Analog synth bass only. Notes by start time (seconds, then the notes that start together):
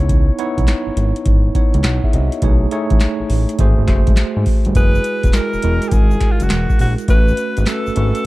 Already playing: C#2
0.58 B1
0.86 G#1
0.97 G#1
1.26 G#1
1.74 C#2
1.84 B1
2.13 C2
2.42 B1
2.91 A1
3.20 A1
3.30 A1
3.59 G#1
3.78 G#1
3.88 F#1
4.08 G#1
4.37 G#2
4.66 G1
4.76 F#1
5.24 E1
5.54 E1
5.64 E1
5.92 G#1
6.41 F#1
6.51 E1
6.80 A#1
7.08 A1
7.58 G#1
7.87 G#1
7.97 G#1